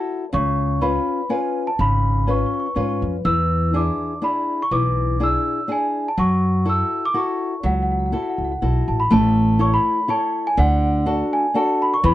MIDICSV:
0, 0, Header, 1, 4, 480
1, 0, Start_track
1, 0, Key_signature, 3, "minor"
1, 0, Tempo, 487409
1, 327, Time_signature, 3, 2, 24, 8
1, 8974, Key_signature, 3, "major"
1, 11958, End_track
2, 0, Start_track
2, 0, Title_t, "Celesta"
2, 0, Program_c, 0, 8
2, 336, Note_on_c, 0, 85, 88
2, 807, Note_on_c, 0, 83, 75
2, 820, Note_off_c, 0, 85, 0
2, 1249, Note_off_c, 0, 83, 0
2, 1282, Note_on_c, 0, 80, 61
2, 1619, Note_off_c, 0, 80, 0
2, 1647, Note_on_c, 0, 81, 82
2, 1764, Note_off_c, 0, 81, 0
2, 1779, Note_on_c, 0, 83, 80
2, 2262, Note_off_c, 0, 83, 0
2, 2269, Note_on_c, 0, 85, 68
2, 2326, Note_off_c, 0, 85, 0
2, 2345, Note_on_c, 0, 85, 46
2, 2403, Note_off_c, 0, 85, 0
2, 2425, Note_on_c, 0, 85, 50
2, 2481, Note_off_c, 0, 85, 0
2, 2500, Note_on_c, 0, 85, 42
2, 2547, Note_off_c, 0, 85, 0
2, 2559, Note_on_c, 0, 85, 48
2, 2609, Note_off_c, 0, 85, 0
2, 2621, Note_on_c, 0, 85, 44
2, 2685, Note_off_c, 0, 85, 0
2, 2706, Note_on_c, 0, 85, 46
2, 2762, Note_off_c, 0, 85, 0
2, 2774, Note_on_c, 0, 85, 42
2, 2834, Note_off_c, 0, 85, 0
2, 2846, Note_on_c, 0, 85, 45
2, 2915, Note_off_c, 0, 85, 0
2, 3202, Note_on_c, 0, 88, 90
2, 3697, Note_off_c, 0, 88, 0
2, 3703, Note_on_c, 0, 86, 69
2, 4141, Note_off_c, 0, 86, 0
2, 4176, Note_on_c, 0, 83, 80
2, 4545, Note_off_c, 0, 83, 0
2, 4554, Note_on_c, 0, 85, 88
2, 4652, Note_on_c, 0, 86, 83
2, 4660, Note_off_c, 0, 85, 0
2, 5142, Note_off_c, 0, 86, 0
2, 5155, Note_on_c, 0, 88, 89
2, 5586, Note_off_c, 0, 88, 0
2, 5632, Note_on_c, 0, 80, 75
2, 5956, Note_off_c, 0, 80, 0
2, 5992, Note_on_c, 0, 81, 75
2, 6087, Note_off_c, 0, 81, 0
2, 6100, Note_on_c, 0, 85, 83
2, 6585, Note_off_c, 0, 85, 0
2, 6593, Note_on_c, 0, 88, 84
2, 6917, Note_off_c, 0, 88, 0
2, 6947, Note_on_c, 0, 86, 88
2, 7055, Note_off_c, 0, 86, 0
2, 7062, Note_on_c, 0, 85, 68
2, 7498, Note_off_c, 0, 85, 0
2, 7543, Note_on_c, 0, 78, 64
2, 7604, Note_off_c, 0, 78, 0
2, 7628, Note_on_c, 0, 78, 44
2, 7686, Note_off_c, 0, 78, 0
2, 7708, Note_on_c, 0, 78, 52
2, 7765, Note_off_c, 0, 78, 0
2, 7796, Note_on_c, 0, 78, 42
2, 7844, Note_off_c, 0, 78, 0
2, 7874, Note_on_c, 0, 78, 37
2, 7918, Note_off_c, 0, 78, 0
2, 7938, Note_on_c, 0, 78, 40
2, 7987, Note_off_c, 0, 78, 0
2, 8016, Note_on_c, 0, 78, 37
2, 8065, Note_off_c, 0, 78, 0
2, 8099, Note_on_c, 0, 78, 34
2, 8146, Note_off_c, 0, 78, 0
2, 8170, Note_on_c, 0, 78, 43
2, 8221, Note_off_c, 0, 78, 0
2, 8247, Note_on_c, 0, 78, 35
2, 8296, Note_off_c, 0, 78, 0
2, 8318, Note_on_c, 0, 78, 47
2, 8367, Note_off_c, 0, 78, 0
2, 8388, Note_on_c, 0, 78, 42
2, 8438, Note_off_c, 0, 78, 0
2, 8746, Note_on_c, 0, 81, 64
2, 8853, Note_off_c, 0, 81, 0
2, 8861, Note_on_c, 0, 83, 73
2, 8968, Note_off_c, 0, 83, 0
2, 8983, Note_on_c, 0, 81, 83
2, 9463, Note_on_c, 0, 85, 83
2, 9476, Note_off_c, 0, 81, 0
2, 9518, Note_off_c, 0, 85, 0
2, 9589, Note_on_c, 0, 83, 90
2, 9917, Note_off_c, 0, 83, 0
2, 9949, Note_on_c, 0, 81, 73
2, 10311, Note_on_c, 0, 80, 82
2, 10320, Note_off_c, 0, 81, 0
2, 10416, Note_off_c, 0, 80, 0
2, 10432, Note_on_c, 0, 78, 77
2, 11113, Note_off_c, 0, 78, 0
2, 11159, Note_on_c, 0, 80, 83
2, 11367, Note_off_c, 0, 80, 0
2, 11389, Note_on_c, 0, 81, 66
2, 11638, Note_off_c, 0, 81, 0
2, 11641, Note_on_c, 0, 83, 76
2, 11740, Note_off_c, 0, 83, 0
2, 11755, Note_on_c, 0, 85, 89
2, 11865, Note_off_c, 0, 85, 0
2, 11869, Note_on_c, 0, 83, 83
2, 11958, Note_off_c, 0, 83, 0
2, 11958, End_track
3, 0, Start_track
3, 0, Title_t, "Nylon-string guitar"
3, 0, Program_c, 1, 24
3, 0, Note_on_c, 1, 64, 40
3, 0, Note_on_c, 1, 66, 42
3, 0, Note_on_c, 1, 69, 45
3, 230, Note_off_c, 1, 64, 0
3, 233, Note_off_c, 1, 66, 0
3, 235, Note_off_c, 1, 69, 0
3, 321, Note_on_c, 1, 49, 64
3, 785, Note_off_c, 1, 49, 0
3, 800, Note_on_c, 1, 61, 46
3, 806, Note_on_c, 1, 65, 42
3, 808, Note_on_c, 1, 71, 50
3, 1184, Note_off_c, 1, 61, 0
3, 1185, Note_off_c, 1, 65, 0
3, 1188, Note_off_c, 1, 71, 0
3, 1275, Note_on_c, 1, 61, 46
3, 1279, Note_on_c, 1, 65, 35
3, 1283, Note_on_c, 1, 71, 48
3, 1660, Note_off_c, 1, 61, 0
3, 1663, Note_off_c, 1, 71, 0
3, 1664, Note_off_c, 1, 65, 0
3, 1763, Note_on_c, 1, 49, 61
3, 2225, Note_off_c, 1, 49, 0
3, 2235, Note_on_c, 1, 61, 36
3, 2242, Note_on_c, 1, 65, 32
3, 2245, Note_on_c, 1, 71, 49
3, 2622, Note_off_c, 1, 61, 0
3, 2624, Note_off_c, 1, 65, 0
3, 2627, Note_off_c, 1, 71, 0
3, 2714, Note_on_c, 1, 61, 45
3, 2718, Note_on_c, 1, 65, 37
3, 2724, Note_on_c, 1, 71, 45
3, 3102, Note_off_c, 1, 61, 0
3, 3104, Note_off_c, 1, 65, 0
3, 3108, Note_off_c, 1, 71, 0
3, 3200, Note_on_c, 1, 52, 61
3, 3667, Note_off_c, 1, 52, 0
3, 3678, Note_on_c, 1, 62, 39
3, 3684, Note_on_c, 1, 68, 49
3, 3687, Note_on_c, 1, 64, 39
3, 4064, Note_off_c, 1, 62, 0
3, 4069, Note_off_c, 1, 64, 0
3, 4069, Note_off_c, 1, 68, 0
3, 4152, Note_on_c, 1, 62, 43
3, 4157, Note_on_c, 1, 64, 40
3, 4162, Note_on_c, 1, 68, 44
3, 4541, Note_off_c, 1, 62, 0
3, 4544, Note_off_c, 1, 64, 0
3, 4547, Note_off_c, 1, 68, 0
3, 4642, Note_on_c, 1, 52, 62
3, 5108, Note_off_c, 1, 52, 0
3, 5119, Note_on_c, 1, 62, 44
3, 5123, Note_on_c, 1, 64, 39
3, 5129, Note_on_c, 1, 68, 46
3, 5505, Note_off_c, 1, 62, 0
3, 5505, Note_off_c, 1, 64, 0
3, 5510, Note_off_c, 1, 68, 0
3, 5592, Note_on_c, 1, 62, 46
3, 5597, Note_on_c, 1, 64, 38
3, 5601, Note_on_c, 1, 68, 50
3, 5979, Note_off_c, 1, 62, 0
3, 5982, Note_off_c, 1, 64, 0
3, 5985, Note_off_c, 1, 68, 0
3, 6082, Note_on_c, 1, 54, 69
3, 6547, Note_off_c, 1, 54, 0
3, 6552, Note_on_c, 1, 64, 46
3, 6554, Note_on_c, 1, 66, 37
3, 6559, Note_on_c, 1, 69, 48
3, 6939, Note_off_c, 1, 64, 0
3, 6941, Note_off_c, 1, 66, 0
3, 6943, Note_off_c, 1, 69, 0
3, 7032, Note_on_c, 1, 66, 41
3, 7034, Note_on_c, 1, 64, 42
3, 7039, Note_on_c, 1, 69, 41
3, 7419, Note_off_c, 1, 64, 0
3, 7419, Note_off_c, 1, 66, 0
3, 7423, Note_off_c, 1, 69, 0
3, 7517, Note_on_c, 1, 54, 69
3, 7987, Note_off_c, 1, 54, 0
3, 7999, Note_on_c, 1, 66, 37
3, 8000, Note_on_c, 1, 64, 43
3, 8008, Note_on_c, 1, 69, 48
3, 8388, Note_off_c, 1, 64, 0
3, 8389, Note_off_c, 1, 66, 0
3, 8394, Note_off_c, 1, 69, 0
3, 8489, Note_on_c, 1, 64, 43
3, 8489, Note_on_c, 1, 66, 40
3, 8494, Note_on_c, 1, 69, 45
3, 8876, Note_off_c, 1, 64, 0
3, 8878, Note_off_c, 1, 66, 0
3, 8881, Note_off_c, 1, 69, 0
3, 8967, Note_on_c, 1, 57, 73
3, 9439, Note_off_c, 1, 57, 0
3, 9445, Note_on_c, 1, 64, 44
3, 9448, Note_on_c, 1, 69, 44
3, 9454, Note_on_c, 1, 73, 49
3, 9836, Note_off_c, 1, 64, 0
3, 9836, Note_off_c, 1, 69, 0
3, 9841, Note_off_c, 1, 73, 0
3, 9928, Note_on_c, 1, 64, 43
3, 9935, Note_on_c, 1, 69, 41
3, 9935, Note_on_c, 1, 73, 46
3, 10317, Note_off_c, 1, 64, 0
3, 10321, Note_off_c, 1, 69, 0
3, 10321, Note_off_c, 1, 73, 0
3, 10413, Note_on_c, 1, 50, 67
3, 10881, Note_off_c, 1, 50, 0
3, 10892, Note_on_c, 1, 62, 46
3, 10898, Note_on_c, 1, 66, 44
3, 10899, Note_on_c, 1, 69, 48
3, 11277, Note_off_c, 1, 62, 0
3, 11280, Note_off_c, 1, 69, 0
3, 11281, Note_off_c, 1, 66, 0
3, 11367, Note_on_c, 1, 62, 40
3, 11376, Note_on_c, 1, 66, 44
3, 11380, Note_on_c, 1, 69, 55
3, 11754, Note_off_c, 1, 62, 0
3, 11756, Note_off_c, 1, 66, 0
3, 11761, Note_off_c, 1, 69, 0
3, 11853, Note_on_c, 1, 52, 74
3, 11958, Note_off_c, 1, 52, 0
3, 11958, End_track
4, 0, Start_track
4, 0, Title_t, "Upright bass"
4, 0, Program_c, 2, 32
4, 332, Note_on_c, 2, 37, 94
4, 950, Note_off_c, 2, 37, 0
4, 1763, Note_on_c, 2, 32, 82
4, 2386, Note_off_c, 2, 32, 0
4, 2722, Note_on_c, 2, 44, 66
4, 2946, Note_off_c, 2, 44, 0
4, 2974, Note_on_c, 2, 41, 73
4, 3181, Note_off_c, 2, 41, 0
4, 3200, Note_on_c, 2, 40, 90
4, 3826, Note_off_c, 2, 40, 0
4, 4641, Note_on_c, 2, 35, 76
4, 5265, Note_off_c, 2, 35, 0
4, 6083, Note_on_c, 2, 42, 87
4, 6706, Note_off_c, 2, 42, 0
4, 7520, Note_on_c, 2, 37, 79
4, 7997, Note_off_c, 2, 37, 0
4, 8254, Note_on_c, 2, 37, 62
4, 8465, Note_off_c, 2, 37, 0
4, 8490, Note_on_c, 2, 35, 68
4, 8716, Note_off_c, 2, 35, 0
4, 8743, Note_on_c, 2, 33, 72
4, 8952, Note_off_c, 2, 33, 0
4, 8978, Note_on_c, 2, 33, 100
4, 9603, Note_off_c, 2, 33, 0
4, 10418, Note_on_c, 2, 38, 94
4, 11041, Note_off_c, 2, 38, 0
4, 11854, Note_on_c, 2, 40, 107
4, 11958, Note_off_c, 2, 40, 0
4, 11958, End_track
0, 0, End_of_file